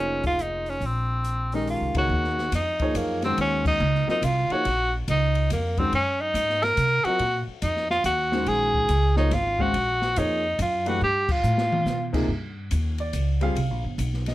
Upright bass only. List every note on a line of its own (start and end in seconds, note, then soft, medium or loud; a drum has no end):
0.00 0.78 F1 medium
0.81 1.77 A#1 medium
1.81 1.94 C2 medium
1.95 2.09 C#2 medium
2.09 2.51 D#2 medium
2.52 2.93 F2 medium
2.95 3.36 F#2 medium
3.37 3.79 D#2 medium
3.80 4.06 C#2 loud
4.08 muted upright bass stroke soft
4.22 4.48 C2 medium
4.50 muted upright bass stroke soft
4.65 5.06 A#1 medium
5.08 5.49 C#2 medium
5.51 5.91 F2 medium
5.92 6.34 F#2 medium
6.34 6.76 G#2 medium
6.77 7.03 C3 medium
7.04 muted upright bass stroke soft
7.20 7.45 A#2 medium
7.47 muted upright bass stroke soft
7.62 8.03 F2 medium
8.04 8.45 D#2 medium
8.47 8.88 A#1 medium
8.89 9.30 C#2 medium
9.31 9.73 G#1 medium
9.74 10.15 A#1 medium
10.16 10.58 F2 medium
10.59 11.00 F#2 loud
11.01 11.43 G2 medium
11.44 11.85 A2 loud
11.86 12.27 B2 medium
12.28 12.70 G2 medium
12.71 13.13 D#2 medium
13.13 13.55 C#2 medium
13.55 13.70 C2 medium
13.70 13.84 A#1 medium
13.84 13.97 G1 medium
13.98 14.35 B1 medium